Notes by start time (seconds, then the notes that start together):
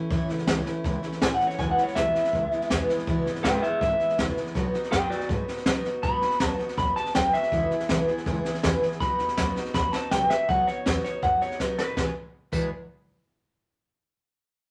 Already playing: A3 C#4
0.10 F#2 A2 E3 A3 C#4 E4, kick, snare
0.28 C#2 A3 C#4 E4, snare
0.38 snare
0.47 C#2 A2 E3 A3 C#4 E4, kick, snare, hi-hat pedal
0.65 A3 C#4 E4, muted upright bass stroke, snare
0.84 C#2 E3 A3 C#4 E4, kick, snare
1.03 A3 C#4 E4, snare
1.12 snare
1.21 A1 A2 E3 A3 C#4 E4 G#5, kick, snare, hi-hat pedal
1.35 F#5
1.40 A3 C#4 E4, muted upright bass stroke, snare
1.47 C#5, snare
1.59 E1 E2 B2 E3 G#3 B3 E4 G#5, kick, snare
1.71 F#5
1.77 E3 G#3 B3 E4, snare
1.83 C#5
1.87 snare
1.95 B1 E2 B2 E3 G#3 B3 E4 E5, kick, snare, hi-hat pedal
2.14 E3 G#3 B3 E4, muted upright bass stroke, snare
2.24 snare
2.33 C#2 E3 G#3 B3 E4, kick, snare
2.51 E3 G#3 B3 E4, snare
2.61 snare
2.70 E2 B2 E3 G#3 B3 E4, kick, snare, hi-hat pedal
2.89 E3 G#3 B3 E4, muted upright bass stroke, snare
2.98 snare
3.07 C#2 E2 B2 E3 G#3 B3 E4, kick, snare
3.26 G#1 E3 G#3 B3 E4, snare
3.36 snare
3.43 G#1 E2 B2 E3 G#3 B3 E4 B4 G5, kick, snare, hi-hat pedal
3.62 E3 G#3 B3 E4 G#4 E5, snare
3.81 G#1 E3 G#3 B3 E4 E5, kick, snare
3.99 E3 G#3 B3 E4, snare
4.09 snare
4.17 E1 E2 B2 E3 G#3 B3 E4, kick, snare, hi-hat pedal
4.36 E3 G#3 B3 E4, muted upright bass stroke, snare
4.46 snare
4.54 B1 B2 F#3 B3 D#4 F#4, kick, snare
4.73 B3 D#4 F#4, muted upright bass stroke, snare
4.83 snare
4.91 F#2 B2 F#3 B3 D#4 F#4 B4 G5, kick, snare, hi-hat pedal
5.10 B3 D#4 F#4 D5, snare
5.20 snare
5.28 G#2 F#3 B3 D#4 F#4 B4, kick, snare
5.48 B3 D#4 F#4, muted upright bass stroke, snare
5.57 snare
5.66 B2 F#3 B3 D#4 F#4, kick, snare, hi-hat pedal
5.84 B3 D#4 F#4, muted upright bass stroke, snare
6.03 G#2 B2 F#3 B3 D#4 F#4 B5, kick, snare
6.22 D#2 B3 D#4 F#4, snare
6.31 snare
6.40 D#2 B2 F#3 B3 D#4 F#4, kick, snare, hi-hat pedal
6.47 A5
6.58 B3 D#4 F#4, muted upright bass stroke, snare
6.68 snare
6.77 D#2 F#3 B3 D#4 F#4 B5, kick, snare
6.96 B3 D#4 F#4 A5, muted upright bass stroke, snare
7.06 snare
7.14 D#2 B2 F#3 B3 D#4 F#4 G5, kick, snare, hi-hat pedal
7.33 B3 D#4 F#4 E5, muted upright bass stroke, snare
7.43 snare
7.51 E1 E2 B2 E3 B3 E4 G#4, kick, snare
7.70 E3 B3 E4 G#4, muted upright bass stroke, snare
7.80 snare
7.88 B1 E2 B2 E3 B3 E4 G#4, kick, snare, hi-hat pedal
8.07 E3 B3 E4 G#4, muted upright bass stroke, snare
8.17 snare
8.26 C#2 E3 B3 E4 G#4, kick, snare
8.44 E3 B3 E4 G#4, muted upright bass stroke, snare
8.54 snare
8.63 E2 B2 E3 B3 E4 G#4, kick, snare, hi-hat pedal
8.81 E3 B3 E4 G#4, muted upright bass stroke, snare
8.92 snare
9.00 B1 B2 F#3 B3 D#4 F#4 B5, kick, snare
9.18 D#2 B3 D#4 F#4, snare
9.28 snare
9.37 D#2 B2 F#3 B3 D#4 F#4, kick, snare, hi-hat pedal
9.56 B3 D#4 F#4, muted upright bass stroke, snare
9.65 snare
9.74 D#2 F#3 B3 D#4 F#4 B5, kick, snare
9.92 B3 D#4 F#4 A5, snare
10.11 B1 B2 F#3 B3 D#4 F#4 G5, kick, snare, hi-hat pedal
10.30 B3 D#4 F#4 E5, muted upright bass stroke, snare
10.48 B1 B2 F#3 B3 D#4 F#4 F#5, kick, snare
10.67 B3 D#4 F#4 C#5, snare
10.86 E2 B2 F#3 B3 D#4 F#4 B4, kick, snare, hi-hat pedal
11.04 B3 D#4 F#4 C#5, muted upright bass stroke, snare
11.22 F#2 F#3 B3 D#4 F#4 F#5, kick, snare
11.41 B3 D#4 F#4 C#5, muted upright bass stroke, snare
11.51 snare
11.60 D#2 B2 F#3 B3 D#4 F#4 B4, kick, snare, hi-hat pedal
11.78 A1 B3 D#4 F#4 B4, snare
11.96 E1 E2 B2 E3 G#3 B3 G#4 B4, kick, snare
12.52 E1 E2 B2 E3 G#3 B3 G#4 B4, kick, crash